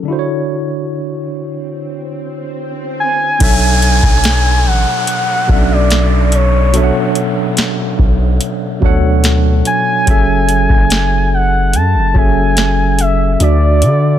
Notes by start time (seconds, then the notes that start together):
Already playing: swell
0.03 D3 D4
0.08 E4 F#4
0.12 C5
0.19 C#5
3.00 G#5
3.39 B1 B2 F#3 D4 A4 C#5, kick, closed hi-hat, crash, downlifter
3.44 E5
3.82 closed hi-hat
4.03 B1, kick
4.24 snare, closed hi-hat
4.66 A1 F#5
5.07 closed hi-hat
5.47 B1 B2 F#3 C#4 A4 D5, kick
5.52 D4 E5
5.72 D5
5.91 snare, closed hi-hat
6.32 C#5, closed hi-hat
6.72 B2 F#3 D4 A4 C#5, closed hi-hat
6.77 E5
6.84 F#5
7.15 closed hi-hat
7.57 snare, closed hi-hat
7.99 B1, kick
8.41 closed hi-hat
8.81 D2 B2 F#3 D4 A4 C#5, kick
8.85 F#5
9.24 snare, closed hi-hat
9.65 G#5, closed hi-hat
10.06 F#1 F#3 C#4 G#4 A4, kick, closed hi-hat
10.11 E5
10.49 closed hi-hat
10.69 F#1, kick
10.90 snare, closed hi-hat
11.34 F#5
11.73 F#2 A5, closed hi-hat
11.95 F#1
12.14 F#1 F#3 C#4 G#4 A4 G#5, kick
12.18 E5
12.57 snare, closed hi-hat
12.99 E5, closed hi-hat
13.39 D2 D3 D4 F#4 D5, closed hi-hat
13.44 E5
13.82 D3, closed hi-hat